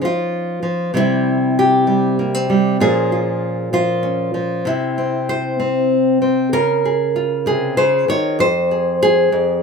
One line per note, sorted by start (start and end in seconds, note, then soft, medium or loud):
0.00 0.61 F3 medium
0.00 0.92 C#4 soft
0.00 0.91 D#4 soft
0.05 0.96 F4 medium
0.63 0.94 F3 medium
0.94 2.79 C3 medium
0.94 1.86 G3 soft
0.94 2.19 C4 soft
0.94 2.19 E4 medium
1.59 2.81 G4 medium
1.87 2.49 G3 medium
2.19 2.34 A#3 soft
2.34 2.80 C4 soft
2.50 2.76 G3 medium
2.80 4.62 A#2 medium
2.80 3.72 F3 medium
2.80 4.02 C#4 soft
2.80 3.11 F4 soft
2.80 3.73 G#4 loud
3.12 3.72 F4 soft
3.73 4.33 F3 medium
3.73 4.66 F4 medium
4.03 4.61 C#4 soft
4.34 4.65 F3 medium
4.65 6.53 C3 medium
4.65 5.91 E4 medium
4.98 5.58 C4 soft
5.29 6.53 C5 medium
5.59 6.20 C4 medium
6.22 6.49 C4 medium
6.53 7.77 C#3 medium
6.53 7.77 A#4 loud
6.85 7.46 G#4 soft
7.16 9.63 F4 soft
7.46 7.77 C3 medium
7.46 8.40 G#4 medium
7.77 8.08 C#3 medium
7.77 8.08 C5 medium
8.08 8.40 D#3 medium
8.08 8.40 C#5 medium
8.39 9.31 F2 medium
8.39 9.63 C5 loud
8.71 9.01 G#4 soft
9.03 9.63 G#4 loud
9.32 9.62 F2 medium